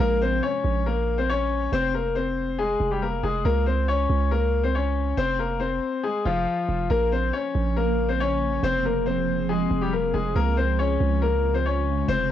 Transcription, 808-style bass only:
0.00 A#1
0.64 A#1
1.72 F1
2.80 F1
3.23 F1
3.45 C#2
4.10 C#2
5.18 F1
6.26 F1
6.69 F1
6.90 A#1
7.55 A#1
8.63 F1
9.71 F1
10.14 F1
10.36 C#2
11.00 C#2
12.08 F1

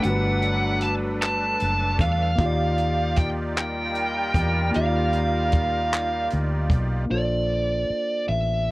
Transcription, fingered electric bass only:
0.05 G1
1.62 F#1
2.00 E2
2.39 D#2
4.35 E2
4.76 D#2
6.33 D2
6.71 B1
7.11 A#1
7.90 muted fingered electric bass stroke
8.29 A1

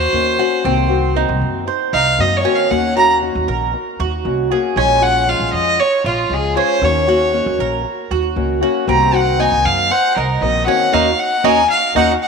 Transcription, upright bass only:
Already playing: D#2
0.13 D#2
0.65 C2
1.29 C2
1.42 F#2
1.93 C2
2.19 F#2
2.71 D#2
3.35 D#2
3.48 A#1
4.00 D#2
4.25 C2
4.76 A#1
5.40 A#1
5.53 F2
6.04 A#1
6.30 C#2
6.82 D#2
7.46 D#2
7.59 A#1
8.11 D#2
8.36 C#2
8.88 C2
9.52 C2
9.65 F#2
10.16 C2
10.41 A#1
10.93 D#2
11.44 D#2
11.95 D#2

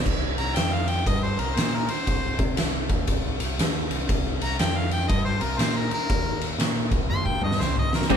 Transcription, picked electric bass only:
0.06 C2
0.38 C2
0.57 F2
1.07 G2
1.39 C2
1.56 A#2
1.88 muted picked electric bass stroke
2.07 C2
2.39 C3
2.56 C2
2.90 D#2
3.08 C2
3.39 C2
3.58 D#2
3.90 C2
4.09 C2
4.42 C2
4.59 F2
5.09 G2
5.41 C2
5.58 A#2
5.92 muted picked electric bass stroke
6.10 D#2
6.58 A#2
6.91 C2
7.10 D#2
7.42 G2
7.60 C2
8.10 C2

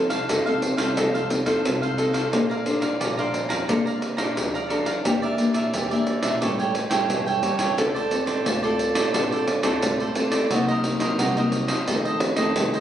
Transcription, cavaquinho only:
Already playing: A4
0.10 A4 C5 F5
0.29 D#4 A4 C5 F5
0.46 A4 C5 F5
0.77 A4 C5 F5
0.97 D#4 A4 C5 F5
1.14 A4 C5 F5
1.30 muted cavaquinho stroke
1.46 A4 C5 F5
1.82 A4 C5 F5
1.97 D#4 A4 C5 F5
2.13 A4 C5 F5
2.32 A4 D5 F5 A#5
2.50 D5 F5 A#5
2.81 D5 F5 A#5
3.00 A4 D5 F5 A#5
3.17 D5 F5 A#5
3.49 D5 F5 A#5
3.68 A4 D5 F5 A#5
3.85 D5 F5 A#5
4.01 muted cavaquinho stroke
4.17 D5 F5 A#5
4.54 D5 F5 A#5
4.69 A4 D5 F5 A#5
4.85 D5 F5 A#5
5.04 G4 A#4 D5 E5
5.22 A#4 D5 E5
5.54 A#4 D5 E5
5.73 G4 A#4 D5 E5
5.91 A#4 D5 E5
6.22 A#4 D5 E5
6.41 G4 A4 C#5 G5
6.59 A4 C#5 G5
6.74 muted cavaquinho stroke
6.90 A4 C#5 G5
7.26 A4 C#5 G5
7.42 G4 A4 C#5 G5
7.58 A4 C#5 G5
7.77 F4 A4 C5 D5
7.94 A4 C5 D5
8.26 A4 C5 D5
8.45 F4 A4 C5 D5
8.63 A4 C5 D5
8.95 A4 C5 D5
9.13 F4 A4 C5 D5
9.31 A4 C5 D5
9.47 muted cavaquinho stroke
9.63 A4 C5 D5
10.00 A4 C5 D5
10.15 F4 A4 C5 D5
10.32 A4 C5 D5
10.50 F#4 A#4 C5 D#5
10.68 A#4 C5 D#5
10.99 A#4 C5 D#5
11.18 F#4 A#4 C5 D#5
11.37 A#4 C5 D#5
11.68 A#4 C5 D#5
11.87 F4 A4 C5 D#5
12.05 A4 C5 D#5
12.21 muted cavaquinho stroke
12.36 A4 C5 D#5
12.74 A4 C5 D#5

